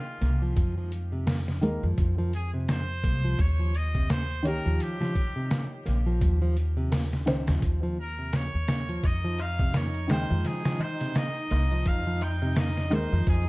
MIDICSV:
0, 0, Header, 1, 8, 480
1, 0, Start_track
1, 0, Key_signature, -4, "minor"
1, 0, Tempo, 705882
1, 384, Time_signature, 4, 2, 24, 8
1, 9173, End_track
2, 0, Start_track
2, 0, Title_t, "Muted trumpet"
2, 0, Program_c, 0, 59
2, 0, Note_on_c, 0, 65, 86
2, 289, Note_off_c, 0, 65, 0
2, 1597, Note_on_c, 0, 68, 83
2, 1702, Note_off_c, 0, 68, 0
2, 1837, Note_on_c, 0, 72, 102
2, 2318, Note_on_c, 0, 73, 109
2, 2328, Note_off_c, 0, 72, 0
2, 2559, Note_on_c, 0, 75, 111
2, 2569, Note_off_c, 0, 73, 0
2, 2796, Note_on_c, 0, 72, 106
2, 2807, Note_off_c, 0, 75, 0
2, 3030, Note_off_c, 0, 72, 0
2, 3038, Note_on_c, 0, 70, 100
2, 3279, Note_on_c, 0, 67, 102
2, 3289, Note_off_c, 0, 70, 0
2, 3991, Note_off_c, 0, 67, 0
2, 5446, Note_on_c, 0, 70, 99
2, 5683, Note_on_c, 0, 73, 107
2, 5694, Note_off_c, 0, 70, 0
2, 6162, Note_on_c, 0, 75, 110
2, 6172, Note_off_c, 0, 73, 0
2, 6403, Note_on_c, 0, 77, 106
2, 6413, Note_off_c, 0, 75, 0
2, 6641, Note_on_c, 0, 73, 105
2, 6651, Note_off_c, 0, 77, 0
2, 6872, Note_off_c, 0, 73, 0
2, 6881, Note_on_c, 0, 72, 103
2, 7116, Note_on_c, 0, 68, 107
2, 7127, Note_off_c, 0, 72, 0
2, 7360, Note_on_c, 0, 72, 103
2, 7371, Note_off_c, 0, 68, 0
2, 7594, Note_on_c, 0, 75, 111
2, 7605, Note_off_c, 0, 72, 0
2, 8075, Note_on_c, 0, 77, 123
2, 8086, Note_off_c, 0, 75, 0
2, 8314, Note_on_c, 0, 79, 115
2, 8324, Note_off_c, 0, 77, 0
2, 8555, Note_on_c, 0, 75, 111
2, 8565, Note_off_c, 0, 79, 0
2, 8800, Note_on_c, 0, 72, 106
2, 8810, Note_off_c, 0, 75, 0
2, 9032, Note_off_c, 0, 72, 0
2, 9037, Note_on_c, 0, 68, 110
2, 9173, Note_off_c, 0, 68, 0
2, 9173, End_track
3, 0, Start_track
3, 0, Title_t, "Violin section"
3, 0, Program_c, 1, 48
3, 6144, Note_on_c, 1, 63, 73
3, 9173, Note_off_c, 1, 63, 0
3, 9173, End_track
4, 0, Start_track
4, 0, Title_t, "Felt piano"
4, 0, Program_c, 2, 0
4, 0, Note_on_c, 2, 51, 92
4, 0, Note_on_c, 2, 56, 81
4, 0, Note_on_c, 2, 79, 96
4, 1072, Note_off_c, 2, 51, 0
4, 1079, Note_off_c, 2, 56, 0
4, 1085, Note_off_c, 2, 79, 0
4, 1097, Note_on_c, 2, 51, 97
4, 1103, Note_on_c, 2, 56, 88
4, 1108, Note_on_c, 2, 70, 108
4, 1237, Note_off_c, 2, 51, 0
4, 1240, Note_off_c, 2, 56, 0
4, 1242, Note_off_c, 2, 70, 0
4, 3009, Note_on_c, 2, 51, 93
4, 3022, Note_on_c, 2, 73, 82
4, 3035, Note_on_c, 2, 67, 100
4, 4913, Note_off_c, 2, 51, 0
4, 4919, Note_off_c, 2, 73, 0
4, 4925, Note_off_c, 2, 67, 0
4, 4936, Note_on_c, 2, 51, 99
4, 4944, Note_on_c, 2, 61, 84
4, 4949, Note_on_c, 2, 72, 108
4, 5076, Note_off_c, 2, 51, 0
4, 5081, Note_off_c, 2, 61, 0
4, 5083, Note_off_c, 2, 72, 0
4, 6851, Note_on_c, 2, 51, 92
4, 6863, Note_on_c, 2, 56, 81
4, 6876, Note_on_c, 2, 79, 102
4, 8754, Note_off_c, 2, 51, 0
4, 8759, Note_off_c, 2, 56, 0
4, 8766, Note_off_c, 2, 79, 0
4, 8774, Note_on_c, 2, 51, 99
4, 8782, Note_on_c, 2, 56, 85
4, 8787, Note_on_c, 2, 70, 112
4, 8915, Note_off_c, 2, 51, 0
4, 8919, Note_off_c, 2, 56, 0
4, 8922, Note_off_c, 2, 70, 0
4, 9173, End_track
5, 0, Start_track
5, 0, Title_t, "Nylon-string guitar"
5, 0, Program_c, 3, 24
5, 144, Note_on_c, 3, 58, 76
5, 270, Note_off_c, 3, 58, 0
5, 285, Note_on_c, 3, 53, 79
5, 510, Note_off_c, 3, 53, 0
5, 526, Note_on_c, 3, 53, 78
5, 620, Note_off_c, 3, 53, 0
5, 764, Note_on_c, 3, 48, 75
5, 854, Note_off_c, 3, 48, 0
5, 863, Note_on_c, 3, 58, 82
5, 943, Note_off_c, 3, 58, 0
5, 1105, Note_on_c, 3, 58, 78
5, 1230, Note_off_c, 3, 58, 0
5, 1245, Note_on_c, 3, 53, 71
5, 1470, Note_off_c, 3, 53, 0
5, 1485, Note_on_c, 3, 53, 76
5, 1580, Note_off_c, 3, 53, 0
5, 1725, Note_on_c, 3, 48, 75
5, 1815, Note_off_c, 3, 48, 0
5, 1826, Note_on_c, 3, 58, 83
5, 1904, Note_off_c, 3, 58, 0
5, 2066, Note_on_c, 3, 58, 75
5, 2191, Note_off_c, 3, 58, 0
5, 2206, Note_on_c, 3, 53, 76
5, 2305, Note_off_c, 3, 53, 0
5, 2445, Note_on_c, 3, 53, 79
5, 2539, Note_off_c, 3, 53, 0
5, 2686, Note_on_c, 3, 48, 77
5, 2775, Note_off_c, 3, 48, 0
5, 2789, Note_on_c, 3, 58, 84
5, 2866, Note_off_c, 3, 58, 0
5, 3028, Note_on_c, 3, 58, 82
5, 3152, Note_off_c, 3, 58, 0
5, 3165, Note_on_c, 3, 53, 71
5, 3390, Note_off_c, 3, 53, 0
5, 3404, Note_on_c, 3, 53, 78
5, 3499, Note_off_c, 3, 53, 0
5, 3645, Note_on_c, 3, 48, 74
5, 3734, Note_off_c, 3, 48, 0
5, 3746, Note_on_c, 3, 58, 86
5, 3824, Note_off_c, 3, 58, 0
5, 3983, Note_on_c, 3, 58, 79
5, 4109, Note_off_c, 3, 58, 0
5, 4122, Note_on_c, 3, 53, 74
5, 4349, Note_off_c, 3, 53, 0
5, 4364, Note_on_c, 3, 53, 78
5, 4459, Note_off_c, 3, 53, 0
5, 4603, Note_on_c, 3, 48, 78
5, 4694, Note_off_c, 3, 48, 0
5, 4704, Note_on_c, 3, 58, 84
5, 4784, Note_off_c, 3, 58, 0
5, 4945, Note_on_c, 3, 58, 80
5, 5070, Note_off_c, 3, 58, 0
5, 5087, Note_on_c, 3, 53, 74
5, 5311, Note_off_c, 3, 53, 0
5, 5324, Note_on_c, 3, 53, 73
5, 5419, Note_off_c, 3, 53, 0
5, 5564, Note_on_c, 3, 48, 73
5, 5654, Note_off_c, 3, 48, 0
5, 5664, Note_on_c, 3, 58, 78
5, 5744, Note_off_c, 3, 58, 0
5, 5903, Note_on_c, 3, 58, 74
5, 6029, Note_off_c, 3, 58, 0
5, 6045, Note_on_c, 3, 53, 70
5, 6145, Note_off_c, 3, 53, 0
5, 6287, Note_on_c, 3, 53, 82
5, 6381, Note_off_c, 3, 53, 0
5, 6525, Note_on_c, 3, 48, 80
5, 6615, Note_off_c, 3, 48, 0
5, 6623, Note_on_c, 3, 58, 82
5, 6703, Note_off_c, 3, 58, 0
5, 6866, Note_on_c, 3, 58, 75
5, 6991, Note_off_c, 3, 58, 0
5, 7006, Note_on_c, 3, 53, 69
5, 7231, Note_off_c, 3, 53, 0
5, 7245, Note_on_c, 3, 53, 76
5, 7340, Note_off_c, 3, 53, 0
5, 7486, Note_on_c, 3, 48, 80
5, 7575, Note_off_c, 3, 48, 0
5, 7587, Note_on_c, 3, 58, 83
5, 7665, Note_off_c, 3, 58, 0
5, 7828, Note_on_c, 3, 58, 82
5, 7952, Note_off_c, 3, 58, 0
5, 7968, Note_on_c, 3, 53, 76
5, 8192, Note_off_c, 3, 53, 0
5, 8206, Note_on_c, 3, 53, 79
5, 8300, Note_off_c, 3, 53, 0
5, 8447, Note_on_c, 3, 48, 80
5, 8536, Note_off_c, 3, 48, 0
5, 8548, Note_on_c, 3, 58, 81
5, 8626, Note_off_c, 3, 58, 0
5, 8787, Note_on_c, 3, 58, 76
5, 8911, Note_off_c, 3, 58, 0
5, 8926, Note_on_c, 3, 53, 69
5, 9151, Note_off_c, 3, 53, 0
5, 9173, End_track
6, 0, Start_track
6, 0, Title_t, "Upright bass"
6, 0, Program_c, 4, 32
6, 146, Note_on_c, 4, 36, 83
6, 361, Note_off_c, 4, 36, 0
6, 386, Note_on_c, 4, 41, 92
6, 1108, Note_off_c, 4, 41, 0
6, 1108, Note_on_c, 4, 39, 93
6, 1229, Note_off_c, 4, 39, 0
6, 1247, Note_on_c, 4, 41, 103
6, 1334, Note_off_c, 4, 41, 0
6, 1349, Note_on_c, 4, 41, 86
6, 2067, Note_on_c, 4, 36, 102
6, 2078, Note_off_c, 4, 41, 0
6, 2282, Note_off_c, 4, 36, 0
6, 2307, Note_on_c, 4, 39, 95
6, 3030, Note_off_c, 4, 39, 0
6, 3030, Note_on_c, 4, 37, 99
6, 3150, Note_off_c, 4, 37, 0
6, 3167, Note_on_c, 4, 39, 96
6, 3254, Note_off_c, 4, 39, 0
6, 3990, Note_on_c, 4, 34, 84
6, 4203, Note_off_c, 4, 34, 0
6, 4228, Note_on_c, 4, 39, 97
6, 4950, Note_off_c, 4, 39, 0
6, 4950, Note_on_c, 4, 37, 96
6, 5070, Note_off_c, 4, 37, 0
6, 5090, Note_on_c, 4, 39, 99
6, 5175, Note_off_c, 4, 39, 0
6, 5187, Note_on_c, 4, 39, 86
6, 5806, Note_off_c, 4, 39, 0
6, 5810, Note_on_c, 4, 39, 92
6, 6128, Note_off_c, 4, 39, 0
6, 6147, Note_on_c, 4, 41, 97
6, 6871, Note_off_c, 4, 41, 0
6, 6871, Note_on_c, 4, 39, 97
6, 6991, Note_off_c, 4, 39, 0
6, 7010, Note_on_c, 4, 41, 100
6, 7095, Note_off_c, 4, 41, 0
6, 7829, Note_on_c, 4, 36, 89
6, 8043, Note_off_c, 4, 36, 0
6, 8068, Note_on_c, 4, 41, 102
6, 8787, Note_off_c, 4, 41, 0
6, 8787, Note_on_c, 4, 39, 103
6, 8908, Note_off_c, 4, 39, 0
6, 8925, Note_on_c, 4, 41, 103
6, 9012, Note_off_c, 4, 41, 0
6, 9025, Note_on_c, 4, 41, 89
6, 9173, Note_off_c, 4, 41, 0
6, 9173, End_track
7, 0, Start_track
7, 0, Title_t, "Darbuka"
7, 6147, Note_on_c, 9, 63, 48
7, 6215, Note_off_c, 9, 63, 0
7, 6286, Note_on_c, 9, 63, 23
7, 6354, Note_off_c, 9, 63, 0
7, 6389, Note_on_c, 9, 63, 84
7, 6457, Note_off_c, 9, 63, 0
7, 6530, Note_on_c, 9, 63, 40
7, 6598, Note_off_c, 9, 63, 0
7, 6627, Note_on_c, 9, 63, 55
7, 6695, Note_off_c, 9, 63, 0
7, 6762, Note_on_c, 9, 63, 23
7, 6830, Note_off_c, 9, 63, 0
7, 6872, Note_on_c, 9, 63, 84
7, 6940, Note_off_c, 9, 63, 0
7, 7006, Note_on_c, 9, 63, 41
7, 7009, Note_on_c, 9, 64, 61
7, 7074, Note_off_c, 9, 63, 0
7, 7077, Note_off_c, 9, 64, 0
7, 7111, Note_on_c, 9, 63, 52
7, 7179, Note_off_c, 9, 63, 0
7, 7247, Note_on_c, 9, 63, 23
7, 7315, Note_off_c, 9, 63, 0
7, 7342, Note_on_c, 9, 64, 63
7, 7348, Note_on_c, 9, 63, 91
7, 7410, Note_off_c, 9, 64, 0
7, 7416, Note_off_c, 9, 63, 0
7, 7488, Note_on_c, 9, 63, 44
7, 7556, Note_off_c, 9, 63, 0
7, 7589, Note_on_c, 9, 63, 48
7, 7657, Note_off_c, 9, 63, 0
7, 7730, Note_on_c, 9, 63, 26
7, 7798, Note_off_c, 9, 63, 0
7, 7830, Note_on_c, 9, 63, 82
7, 7898, Note_off_c, 9, 63, 0
7, 7967, Note_on_c, 9, 63, 41
7, 8035, Note_off_c, 9, 63, 0
7, 8067, Note_on_c, 9, 63, 51
7, 8135, Note_off_c, 9, 63, 0
7, 8202, Note_on_c, 9, 63, 26
7, 8270, Note_off_c, 9, 63, 0
7, 8309, Note_on_c, 9, 63, 95
7, 8377, Note_off_c, 9, 63, 0
7, 8445, Note_on_c, 9, 63, 41
7, 8513, Note_off_c, 9, 63, 0
7, 8548, Note_on_c, 9, 63, 51
7, 8616, Note_off_c, 9, 63, 0
7, 8686, Note_on_c, 9, 63, 28
7, 8754, Note_off_c, 9, 63, 0
7, 8779, Note_on_c, 9, 63, 90
7, 8847, Note_off_c, 9, 63, 0
7, 8923, Note_on_c, 9, 63, 42
7, 8925, Note_on_c, 9, 64, 61
7, 8991, Note_off_c, 9, 63, 0
7, 8993, Note_off_c, 9, 64, 0
7, 9024, Note_on_c, 9, 63, 53
7, 9092, Note_off_c, 9, 63, 0
7, 9173, End_track
8, 0, Start_track
8, 0, Title_t, "Drums"
8, 147, Note_on_c, 9, 42, 70
8, 150, Note_on_c, 9, 38, 44
8, 215, Note_off_c, 9, 42, 0
8, 218, Note_off_c, 9, 38, 0
8, 384, Note_on_c, 9, 36, 107
8, 385, Note_on_c, 9, 42, 88
8, 452, Note_off_c, 9, 36, 0
8, 453, Note_off_c, 9, 42, 0
8, 625, Note_on_c, 9, 42, 73
8, 693, Note_off_c, 9, 42, 0
8, 863, Note_on_c, 9, 46, 81
8, 866, Note_on_c, 9, 38, 115
8, 931, Note_off_c, 9, 46, 0
8, 934, Note_off_c, 9, 38, 0
8, 1008, Note_on_c, 9, 38, 58
8, 1076, Note_off_c, 9, 38, 0
8, 1108, Note_on_c, 9, 42, 66
8, 1176, Note_off_c, 9, 42, 0
8, 1345, Note_on_c, 9, 36, 114
8, 1345, Note_on_c, 9, 42, 88
8, 1413, Note_off_c, 9, 36, 0
8, 1413, Note_off_c, 9, 42, 0
8, 1586, Note_on_c, 9, 42, 61
8, 1654, Note_off_c, 9, 42, 0
8, 1825, Note_on_c, 9, 42, 86
8, 1828, Note_on_c, 9, 38, 103
8, 1893, Note_off_c, 9, 42, 0
8, 1896, Note_off_c, 9, 38, 0
8, 2065, Note_on_c, 9, 36, 93
8, 2067, Note_on_c, 9, 42, 72
8, 2133, Note_off_c, 9, 36, 0
8, 2135, Note_off_c, 9, 42, 0
8, 2305, Note_on_c, 9, 36, 107
8, 2305, Note_on_c, 9, 42, 87
8, 2373, Note_off_c, 9, 36, 0
8, 2373, Note_off_c, 9, 42, 0
8, 2547, Note_on_c, 9, 42, 69
8, 2615, Note_off_c, 9, 42, 0
8, 2685, Note_on_c, 9, 36, 95
8, 2753, Note_off_c, 9, 36, 0
8, 2786, Note_on_c, 9, 42, 89
8, 2788, Note_on_c, 9, 38, 117
8, 2854, Note_off_c, 9, 42, 0
8, 2856, Note_off_c, 9, 38, 0
8, 2927, Note_on_c, 9, 42, 44
8, 2995, Note_off_c, 9, 42, 0
8, 3028, Note_on_c, 9, 42, 69
8, 3096, Note_off_c, 9, 42, 0
8, 3266, Note_on_c, 9, 42, 91
8, 3334, Note_off_c, 9, 42, 0
8, 3411, Note_on_c, 9, 38, 56
8, 3479, Note_off_c, 9, 38, 0
8, 3505, Note_on_c, 9, 36, 91
8, 3506, Note_on_c, 9, 42, 60
8, 3573, Note_off_c, 9, 36, 0
8, 3574, Note_off_c, 9, 42, 0
8, 3745, Note_on_c, 9, 42, 86
8, 3748, Note_on_c, 9, 38, 117
8, 3813, Note_off_c, 9, 42, 0
8, 3816, Note_off_c, 9, 38, 0
8, 3987, Note_on_c, 9, 42, 69
8, 3990, Note_on_c, 9, 38, 44
8, 4055, Note_off_c, 9, 42, 0
8, 4058, Note_off_c, 9, 38, 0
8, 4225, Note_on_c, 9, 36, 108
8, 4226, Note_on_c, 9, 42, 88
8, 4293, Note_off_c, 9, 36, 0
8, 4294, Note_off_c, 9, 42, 0
8, 4466, Note_on_c, 9, 42, 69
8, 4534, Note_off_c, 9, 42, 0
8, 4706, Note_on_c, 9, 46, 84
8, 4709, Note_on_c, 9, 38, 119
8, 4774, Note_off_c, 9, 46, 0
8, 4777, Note_off_c, 9, 38, 0
8, 4849, Note_on_c, 9, 38, 57
8, 4917, Note_off_c, 9, 38, 0
8, 4945, Note_on_c, 9, 42, 83
8, 4947, Note_on_c, 9, 38, 107
8, 5013, Note_off_c, 9, 42, 0
8, 5015, Note_off_c, 9, 38, 0
8, 5082, Note_on_c, 9, 42, 82
8, 5085, Note_on_c, 9, 38, 106
8, 5150, Note_off_c, 9, 42, 0
8, 5153, Note_off_c, 9, 38, 0
8, 5183, Note_on_c, 9, 42, 90
8, 5184, Note_on_c, 9, 36, 108
8, 5251, Note_off_c, 9, 42, 0
8, 5252, Note_off_c, 9, 36, 0
8, 5663, Note_on_c, 9, 42, 81
8, 5666, Note_on_c, 9, 38, 104
8, 5731, Note_off_c, 9, 42, 0
8, 5734, Note_off_c, 9, 38, 0
8, 5903, Note_on_c, 9, 42, 77
8, 5906, Note_on_c, 9, 38, 102
8, 5971, Note_off_c, 9, 42, 0
8, 5974, Note_off_c, 9, 38, 0
8, 6044, Note_on_c, 9, 42, 39
8, 6112, Note_off_c, 9, 42, 0
8, 6143, Note_on_c, 9, 42, 90
8, 6144, Note_on_c, 9, 36, 104
8, 6211, Note_off_c, 9, 42, 0
8, 6212, Note_off_c, 9, 36, 0
8, 6383, Note_on_c, 9, 42, 68
8, 6451, Note_off_c, 9, 42, 0
8, 6523, Note_on_c, 9, 36, 97
8, 6591, Note_off_c, 9, 36, 0
8, 6622, Note_on_c, 9, 42, 87
8, 6624, Note_on_c, 9, 38, 119
8, 6690, Note_off_c, 9, 42, 0
8, 6692, Note_off_c, 9, 38, 0
8, 6762, Note_on_c, 9, 42, 44
8, 6830, Note_off_c, 9, 42, 0
8, 6865, Note_on_c, 9, 42, 80
8, 6867, Note_on_c, 9, 38, 105
8, 6933, Note_off_c, 9, 42, 0
8, 6935, Note_off_c, 9, 38, 0
8, 7104, Note_on_c, 9, 42, 62
8, 7107, Note_on_c, 9, 38, 37
8, 7172, Note_off_c, 9, 42, 0
8, 7175, Note_off_c, 9, 38, 0
8, 7242, Note_on_c, 9, 42, 81
8, 7245, Note_on_c, 9, 38, 100
8, 7310, Note_off_c, 9, 42, 0
8, 7313, Note_off_c, 9, 38, 0
8, 7484, Note_on_c, 9, 42, 62
8, 7487, Note_on_c, 9, 38, 35
8, 7552, Note_off_c, 9, 42, 0
8, 7555, Note_off_c, 9, 38, 0
8, 7584, Note_on_c, 9, 42, 89
8, 7587, Note_on_c, 9, 38, 111
8, 7652, Note_off_c, 9, 42, 0
8, 7655, Note_off_c, 9, 38, 0
8, 7825, Note_on_c, 9, 42, 69
8, 7827, Note_on_c, 9, 38, 41
8, 7893, Note_off_c, 9, 42, 0
8, 7895, Note_off_c, 9, 38, 0
8, 8062, Note_on_c, 9, 42, 90
8, 8064, Note_on_c, 9, 36, 111
8, 8130, Note_off_c, 9, 42, 0
8, 8132, Note_off_c, 9, 36, 0
8, 8305, Note_on_c, 9, 42, 67
8, 8373, Note_off_c, 9, 42, 0
8, 8542, Note_on_c, 9, 46, 82
8, 8544, Note_on_c, 9, 38, 127
8, 8610, Note_off_c, 9, 46, 0
8, 8612, Note_off_c, 9, 38, 0
8, 8687, Note_on_c, 9, 38, 58
8, 8755, Note_off_c, 9, 38, 0
8, 8784, Note_on_c, 9, 42, 67
8, 8852, Note_off_c, 9, 42, 0
8, 9023, Note_on_c, 9, 36, 109
8, 9023, Note_on_c, 9, 42, 92
8, 9091, Note_off_c, 9, 36, 0
8, 9091, Note_off_c, 9, 42, 0
8, 9173, End_track
0, 0, End_of_file